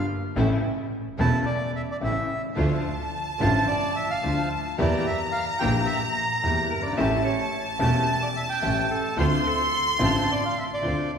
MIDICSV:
0, 0, Header, 1, 7, 480
1, 0, Start_track
1, 0, Key_signature, -1, "minor"
1, 0, Tempo, 551978
1, 314, Time_signature, 4, 2, 24, 8
1, 9725, End_track
2, 0, Start_track
2, 0, Title_t, "Violin section"
2, 0, Program_c, 0, 48
2, 2227, Note_on_c, 0, 81, 84
2, 4129, Note_off_c, 0, 81, 0
2, 4159, Note_on_c, 0, 82, 94
2, 6035, Note_off_c, 0, 82, 0
2, 6075, Note_on_c, 0, 81, 96
2, 7980, Note_off_c, 0, 81, 0
2, 7985, Note_on_c, 0, 84, 109
2, 9639, Note_off_c, 0, 84, 0
2, 9725, End_track
3, 0, Start_track
3, 0, Title_t, "Bandoneon"
3, 0, Program_c, 1, 23
3, 1044, Note_on_c, 1, 81, 82
3, 1262, Note_off_c, 1, 81, 0
3, 1267, Note_on_c, 1, 74, 73
3, 1493, Note_off_c, 1, 74, 0
3, 1530, Note_on_c, 1, 76, 72
3, 1580, Note_off_c, 1, 76, 0
3, 1664, Note_on_c, 1, 74, 67
3, 1711, Note_off_c, 1, 74, 0
3, 1778, Note_on_c, 1, 76, 65
3, 2103, Note_off_c, 1, 76, 0
3, 2972, Note_on_c, 1, 81, 85
3, 3193, Note_off_c, 1, 81, 0
3, 3196, Note_on_c, 1, 74, 73
3, 3425, Note_off_c, 1, 74, 0
3, 3441, Note_on_c, 1, 76, 74
3, 3568, Note_off_c, 1, 76, 0
3, 3570, Note_on_c, 1, 77, 74
3, 3904, Note_off_c, 1, 77, 0
3, 4181, Note_on_c, 1, 74, 68
3, 4399, Note_off_c, 1, 74, 0
3, 4411, Note_on_c, 1, 76, 69
3, 4518, Note_off_c, 1, 76, 0
3, 4628, Note_on_c, 1, 77, 74
3, 4739, Note_off_c, 1, 77, 0
3, 4865, Note_on_c, 1, 79, 79
3, 4976, Note_off_c, 1, 79, 0
3, 5095, Note_on_c, 1, 76, 75
3, 5208, Note_off_c, 1, 76, 0
3, 5326, Note_on_c, 1, 82, 92
3, 5785, Note_off_c, 1, 82, 0
3, 6788, Note_on_c, 1, 81, 90
3, 7119, Note_off_c, 1, 81, 0
3, 7153, Note_on_c, 1, 74, 77
3, 7205, Note_off_c, 1, 74, 0
3, 7272, Note_on_c, 1, 76, 77
3, 7324, Note_off_c, 1, 76, 0
3, 7387, Note_on_c, 1, 79, 78
3, 7719, Note_off_c, 1, 79, 0
3, 8733, Note_on_c, 1, 81, 81
3, 8963, Note_off_c, 1, 81, 0
3, 8973, Note_on_c, 1, 74, 73
3, 9070, Note_off_c, 1, 74, 0
3, 9092, Note_on_c, 1, 77, 71
3, 9200, Note_off_c, 1, 77, 0
3, 9203, Note_on_c, 1, 76, 67
3, 9253, Note_off_c, 1, 76, 0
3, 9335, Note_on_c, 1, 74, 67
3, 9662, Note_off_c, 1, 74, 0
3, 9725, End_track
4, 0, Start_track
4, 0, Title_t, "Clarinet"
4, 0, Program_c, 2, 71
4, 5826, Note_on_c, 2, 70, 77
4, 5937, Note_on_c, 2, 74, 84
4, 5950, Note_off_c, 2, 70, 0
4, 6061, Note_on_c, 2, 76, 93
4, 6074, Note_off_c, 2, 74, 0
4, 6296, Note_off_c, 2, 76, 0
4, 6301, Note_on_c, 2, 73, 77
4, 6638, Note_off_c, 2, 73, 0
4, 7748, Note_on_c, 2, 69, 86
4, 7985, Note_on_c, 2, 72, 99
4, 7998, Note_off_c, 2, 69, 0
4, 8237, Note_on_c, 2, 69, 82
4, 8250, Note_off_c, 2, 72, 0
4, 8587, Note_off_c, 2, 69, 0
4, 9725, End_track
5, 0, Start_track
5, 0, Title_t, "String section"
5, 0, Program_c, 3, 48
5, 317, Note_on_c, 3, 57, 68
5, 319, Note_on_c, 3, 61, 61
5, 323, Note_on_c, 3, 64, 78
5, 516, Note_off_c, 3, 57, 0
5, 517, Note_off_c, 3, 61, 0
5, 519, Note_off_c, 3, 64, 0
5, 1032, Note_on_c, 3, 61, 61
5, 1034, Note_on_c, 3, 64, 75
5, 1035, Note_on_c, 3, 57, 70
5, 1234, Note_off_c, 3, 61, 0
5, 1235, Note_off_c, 3, 57, 0
5, 1235, Note_off_c, 3, 64, 0
5, 1764, Note_on_c, 3, 57, 40
5, 1765, Note_on_c, 3, 64, 45
5, 1767, Note_on_c, 3, 61, 39
5, 1961, Note_off_c, 3, 57, 0
5, 1961, Note_off_c, 3, 64, 0
5, 1962, Note_off_c, 3, 61, 0
5, 2232, Note_on_c, 3, 65, 68
5, 2233, Note_on_c, 3, 57, 66
5, 2233, Note_on_c, 3, 62, 60
5, 2438, Note_off_c, 3, 57, 0
5, 2438, Note_off_c, 3, 62, 0
5, 2438, Note_off_c, 3, 65, 0
5, 2957, Note_on_c, 3, 57, 66
5, 2960, Note_on_c, 3, 65, 74
5, 2962, Note_on_c, 3, 62, 58
5, 3164, Note_off_c, 3, 57, 0
5, 3165, Note_off_c, 3, 65, 0
5, 3166, Note_off_c, 3, 62, 0
5, 3678, Note_on_c, 3, 57, 42
5, 3682, Note_on_c, 3, 62, 40
5, 3683, Note_on_c, 3, 65, 43
5, 3884, Note_off_c, 3, 57, 0
5, 3886, Note_off_c, 3, 62, 0
5, 3887, Note_off_c, 3, 65, 0
5, 4159, Note_on_c, 3, 64, 61
5, 4160, Note_on_c, 3, 67, 73
5, 4161, Note_on_c, 3, 58, 65
5, 4366, Note_off_c, 3, 64, 0
5, 4367, Note_off_c, 3, 58, 0
5, 4367, Note_off_c, 3, 67, 0
5, 4880, Note_on_c, 3, 58, 67
5, 4883, Note_on_c, 3, 64, 58
5, 4884, Note_on_c, 3, 67, 73
5, 5082, Note_off_c, 3, 58, 0
5, 5084, Note_off_c, 3, 64, 0
5, 5084, Note_off_c, 3, 67, 0
5, 5595, Note_on_c, 3, 58, 42
5, 5598, Note_on_c, 3, 67, 50
5, 5599, Note_on_c, 3, 64, 41
5, 5797, Note_off_c, 3, 58, 0
5, 5798, Note_off_c, 3, 67, 0
5, 5799, Note_off_c, 3, 64, 0
5, 6072, Note_on_c, 3, 61, 62
5, 6073, Note_on_c, 3, 57, 69
5, 6074, Note_on_c, 3, 67, 74
5, 6273, Note_off_c, 3, 61, 0
5, 6274, Note_off_c, 3, 57, 0
5, 6275, Note_off_c, 3, 67, 0
5, 6786, Note_on_c, 3, 57, 70
5, 6786, Note_on_c, 3, 61, 67
5, 6791, Note_on_c, 3, 67, 72
5, 6986, Note_off_c, 3, 57, 0
5, 6986, Note_off_c, 3, 61, 0
5, 6989, Note_off_c, 3, 67, 0
5, 7498, Note_on_c, 3, 61, 41
5, 7499, Note_on_c, 3, 57, 44
5, 7503, Note_on_c, 3, 67, 47
5, 7702, Note_off_c, 3, 57, 0
5, 7702, Note_off_c, 3, 61, 0
5, 7704, Note_off_c, 3, 67, 0
5, 7978, Note_on_c, 3, 62, 60
5, 7981, Note_on_c, 3, 60, 68
5, 7982, Note_on_c, 3, 65, 77
5, 8179, Note_off_c, 3, 62, 0
5, 8181, Note_off_c, 3, 60, 0
5, 8181, Note_off_c, 3, 65, 0
5, 8692, Note_on_c, 3, 60, 67
5, 8692, Note_on_c, 3, 62, 60
5, 8697, Note_on_c, 3, 65, 77
5, 8897, Note_off_c, 3, 60, 0
5, 8897, Note_off_c, 3, 62, 0
5, 8900, Note_off_c, 3, 65, 0
5, 9426, Note_on_c, 3, 60, 41
5, 9426, Note_on_c, 3, 62, 39
5, 9428, Note_on_c, 3, 65, 48
5, 9632, Note_off_c, 3, 60, 0
5, 9632, Note_off_c, 3, 62, 0
5, 9633, Note_off_c, 3, 65, 0
5, 9725, End_track
6, 0, Start_track
6, 0, Title_t, "Upright piano"
6, 0, Program_c, 4, 0
6, 312, Note_on_c, 4, 49, 63
6, 313, Note_on_c, 4, 45, 74
6, 314, Note_on_c, 4, 52, 55
6, 316, Note_on_c, 4, 33, 76
6, 317, Note_on_c, 4, 64, 72
6, 319, Note_on_c, 4, 57, 56
6, 514, Note_off_c, 4, 45, 0
6, 514, Note_off_c, 4, 49, 0
6, 515, Note_off_c, 4, 52, 0
6, 516, Note_off_c, 4, 33, 0
6, 517, Note_off_c, 4, 57, 0
6, 517, Note_off_c, 4, 64, 0
6, 1035, Note_on_c, 4, 28, 73
6, 1036, Note_on_c, 4, 40, 72
6, 1036, Note_on_c, 4, 49, 62
6, 1041, Note_on_c, 4, 57, 58
6, 1042, Note_on_c, 4, 52, 55
6, 1046, Note_on_c, 4, 64, 67
6, 1235, Note_off_c, 4, 28, 0
6, 1236, Note_off_c, 4, 40, 0
6, 1236, Note_off_c, 4, 49, 0
6, 1238, Note_off_c, 4, 57, 0
6, 1239, Note_off_c, 4, 52, 0
6, 1241, Note_off_c, 4, 64, 0
6, 1745, Note_on_c, 4, 52, 38
6, 1747, Note_on_c, 4, 49, 41
6, 1748, Note_on_c, 4, 57, 40
6, 1751, Note_on_c, 4, 64, 46
6, 1752, Note_on_c, 4, 33, 50
6, 1753, Note_on_c, 4, 45, 47
6, 1952, Note_off_c, 4, 49, 0
6, 1952, Note_off_c, 4, 52, 0
6, 1953, Note_off_c, 4, 57, 0
6, 1954, Note_off_c, 4, 64, 0
6, 1955, Note_off_c, 4, 33, 0
6, 1956, Note_off_c, 4, 45, 0
6, 2228, Note_on_c, 4, 50, 68
6, 2231, Note_on_c, 4, 65, 68
6, 2233, Note_on_c, 4, 38, 69
6, 2236, Note_on_c, 4, 53, 51
6, 2236, Note_on_c, 4, 57, 54
6, 2437, Note_off_c, 4, 65, 0
6, 2438, Note_off_c, 4, 38, 0
6, 2438, Note_off_c, 4, 50, 0
6, 2439, Note_off_c, 4, 57, 0
6, 2440, Note_off_c, 4, 53, 0
6, 2958, Note_on_c, 4, 50, 62
6, 2964, Note_on_c, 4, 57, 55
6, 2964, Note_on_c, 4, 65, 69
6, 2965, Note_on_c, 4, 53, 55
6, 2966, Note_on_c, 4, 33, 70
6, 2967, Note_on_c, 4, 45, 71
6, 3164, Note_off_c, 4, 50, 0
6, 3167, Note_off_c, 4, 53, 0
6, 3167, Note_off_c, 4, 57, 0
6, 3167, Note_off_c, 4, 65, 0
6, 3168, Note_off_c, 4, 33, 0
6, 3168, Note_off_c, 4, 45, 0
6, 3684, Note_on_c, 4, 38, 51
6, 3686, Note_on_c, 4, 50, 49
6, 3686, Note_on_c, 4, 53, 39
6, 3690, Note_on_c, 4, 65, 48
6, 3691, Note_on_c, 4, 57, 39
6, 3888, Note_off_c, 4, 38, 0
6, 3888, Note_off_c, 4, 53, 0
6, 3890, Note_off_c, 4, 50, 0
6, 3890, Note_off_c, 4, 65, 0
6, 3891, Note_off_c, 4, 57, 0
6, 4157, Note_on_c, 4, 55, 57
6, 4160, Note_on_c, 4, 52, 75
6, 4160, Note_on_c, 4, 67, 68
6, 4161, Note_on_c, 4, 58, 53
6, 4162, Note_on_c, 4, 40, 75
6, 4365, Note_off_c, 4, 55, 0
6, 4367, Note_off_c, 4, 40, 0
6, 4367, Note_off_c, 4, 52, 0
6, 4367, Note_off_c, 4, 58, 0
6, 4367, Note_off_c, 4, 67, 0
6, 4876, Note_on_c, 4, 55, 61
6, 4877, Note_on_c, 4, 34, 71
6, 4877, Note_on_c, 4, 58, 60
6, 4880, Note_on_c, 4, 52, 60
6, 4882, Note_on_c, 4, 46, 75
6, 4882, Note_on_c, 4, 67, 69
6, 5080, Note_off_c, 4, 34, 0
6, 5080, Note_off_c, 4, 55, 0
6, 5080, Note_off_c, 4, 58, 0
6, 5082, Note_off_c, 4, 52, 0
6, 5083, Note_off_c, 4, 46, 0
6, 5083, Note_off_c, 4, 67, 0
6, 5594, Note_on_c, 4, 40, 53
6, 5596, Note_on_c, 4, 58, 43
6, 5597, Note_on_c, 4, 52, 56
6, 5599, Note_on_c, 4, 55, 40
6, 5603, Note_on_c, 4, 67, 50
6, 5796, Note_off_c, 4, 40, 0
6, 5797, Note_off_c, 4, 58, 0
6, 5799, Note_off_c, 4, 55, 0
6, 5800, Note_off_c, 4, 52, 0
6, 5801, Note_off_c, 4, 67, 0
6, 5904, Note_on_c, 4, 30, 46
6, 5956, Note_on_c, 4, 31, 56
6, 5960, Note_off_c, 4, 30, 0
6, 6015, Note_off_c, 4, 31, 0
6, 6020, Note_on_c, 4, 32, 65
6, 6067, Note_on_c, 4, 52, 63
6, 6067, Note_on_c, 4, 57, 58
6, 6068, Note_on_c, 4, 45, 74
6, 6069, Note_on_c, 4, 33, 72
6, 6072, Note_on_c, 4, 61, 58
6, 6074, Note_on_c, 4, 67, 72
6, 6077, Note_off_c, 4, 32, 0
6, 6271, Note_off_c, 4, 52, 0
6, 6271, Note_off_c, 4, 57, 0
6, 6272, Note_off_c, 4, 33, 0
6, 6272, Note_off_c, 4, 45, 0
6, 6273, Note_off_c, 4, 61, 0
6, 6275, Note_off_c, 4, 67, 0
6, 6774, Note_on_c, 4, 52, 61
6, 6777, Note_on_c, 4, 57, 61
6, 6778, Note_on_c, 4, 28, 74
6, 6780, Note_on_c, 4, 40, 78
6, 6780, Note_on_c, 4, 61, 60
6, 6782, Note_on_c, 4, 67, 71
6, 6980, Note_off_c, 4, 52, 0
6, 6982, Note_off_c, 4, 28, 0
6, 6982, Note_off_c, 4, 57, 0
6, 6983, Note_off_c, 4, 40, 0
6, 6983, Note_off_c, 4, 61, 0
6, 6984, Note_off_c, 4, 67, 0
6, 7498, Note_on_c, 4, 57, 42
6, 7500, Note_on_c, 4, 33, 53
6, 7500, Note_on_c, 4, 52, 46
6, 7501, Note_on_c, 4, 45, 54
6, 7504, Note_on_c, 4, 67, 49
6, 7507, Note_on_c, 4, 61, 43
6, 7702, Note_off_c, 4, 33, 0
6, 7702, Note_off_c, 4, 52, 0
6, 7702, Note_off_c, 4, 57, 0
6, 7703, Note_off_c, 4, 45, 0
6, 7704, Note_off_c, 4, 67, 0
6, 7706, Note_off_c, 4, 61, 0
6, 7970, Note_on_c, 4, 50, 69
6, 7975, Note_on_c, 4, 38, 75
6, 7975, Note_on_c, 4, 57, 61
6, 7976, Note_on_c, 4, 60, 59
6, 7976, Note_on_c, 4, 65, 68
6, 8178, Note_off_c, 4, 38, 0
6, 8178, Note_off_c, 4, 50, 0
6, 8178, Note_off_c, 4, 57, 0
6, 8178, Note_off_c, 4, 60, 0
6, 8178, Note_off_c, 4, 65, 0
6, 8688, Note_on_c, 4, 45, 71
6, 8688, Note_on_c, 4, 65, 71
6, 8689, Note_on_c, 4, 33, 74
6, 8690, Note_on_c, 4, 50, 64
6, 8691, Note_on_c, 4, 57, 57
6, 8693, Note_on_c, 4, 60, 56
6, 8895, Note_off_c, 4, 45, 0
6, 8895, Note_off_c, 4, 65, 0
6, 8896, Note_off_c, 4, 33, 0
6, 8896, Note_off_c, 4, 50, 0
6, 8897, Note_off_c, 4, 57, 0
6, 8897, Note_off_c, 4, 60, 0
6, 9409, Note_on_c, 4, 50, 47
6, 9412, Note_on_c, 4, 60, 38
6, 9414, Note_on_c, 4, 38, 49
6, 9416, Note_on_c, 4, 57, 38
6, 9417, Note_on_c, 4, 65, 48
6, 9625, Note_off_c, 4, 60, 0
6, 9626, Note_off_c, 4, 38, 0
6, 9626, Note_off_c, 4, 50, 0
6, 9627, Note_off_c, 4, 57, 0
6, 9628, Note_off_c, 4, 65, 0
6, 9725, End_track
7, 0, Start_track
7, 0, Title_t, "Double bass"
7, 0, Program_c, 5, 43
7, 316, Note_on_c, 5, 33, 82
7, 516, Note_off_c, 5, 33, 0
7, 1035, Note_on_c, 5, 28, 80
7, 1235, Note_off_c, 5, 28, 0
7, 1755, Note_on_c, 5, 33, 54
7, 1956, Note_off_c, 5, 33, 0
7, 2240, Note_on_c, 5, 38, 82
7, 2442, Note_off_c, 5, 38, 0
7, 2963, Note_on_c, 5, 33, 84
7, 3166, Note_off_c, 5, 33, 0
7, 3676, Note_on_c, 5, 38, 57
7, 3883, Note_off_c, 5, 38, 0
7, 4169, Note_on_c, 5, 40, 87
7, 4371, Note_off_c, 5, 40, 0
7, 4893, Note_on_c, 5, 34, 85
7, 5088, Note_off_c, 5, 34, 0
7, 5602, Note_on_c, 5, 40, 55
7, 5800, Note_off_c, 5, 40, 0
7, 5840, Note_on_c, 5, 31, 53
7, 6068, Note_off_c, 5, 31, 0
7, 6074, Note_on_c, 5, 33, 91
7, 6274, Note_off_c, 5, 33, 0
7, 6790, Note_on_c, 5, 28, 81
7, 6988, Note_off_c, 5, 28, 0
7, 7507, Note_on_c, 5, 33, 56
7, 7706, Note_off_c, 5, 33, 0
7, 7981, Note_on_c, 5, 38, 90
7, 8181, Note_off_c, 5, 38, 0
7, 8700, Note_on_c, 5, 33, 76
7, 8901, Note_off_c, 5, 33, 0
7, 9428, Note_on_c, 5, 38, 55
7, 9633, Note_off_c, 5, 38, 0
7, 9725, End_track
0, 0, End_of_file